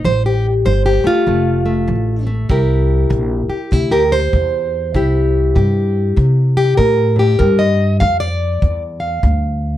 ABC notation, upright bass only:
X:1
M:4/4
L:1/8
Q:"Swing" 1/4=98
K:Cmix
V:1 name="Upright bass" clef=bass
A,,,2 G,,, z F,,,2 A,,,2 | C,,2 B,,, z D,,2 E,,2 | C,,2 G,,2 C,2 A,,2 | G,,2 F,,2 E,,2 D,,2 |]